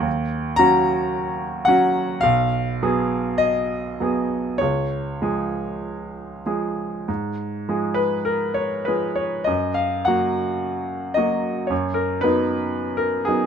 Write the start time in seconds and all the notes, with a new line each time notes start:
0.00 D#2
0.56 F#3 C#4 F#4 A#5
1.65 F#3 C#4 F#4 F#5
2.21 B1 F5
2.83 F#3 B3 G#4
3.38 D#5
4.00 F#3 B3 G#4
4.58 C#2 C#5
5.22 F3 G#3 G#4
6.46 F3 G#3 G#4
7.08 G#2
7.69 F3 G#3 G#4
7.94 B4
8.25 A#4
8.54 C#5
8.85 F3 G#3 G#4 B4
9.15 C#5
9.44 F#2 D#5
9.74 F5
10.05 F#3 A#3 F#4 F#5
11.14 F#3 A#3 F#4 D#5
11.67 F#2 C#5
11.94 A#4
12.21 F#3 B3 D#4 B4
12.97 A#4
13.25 F#3 B3 D#4 G#4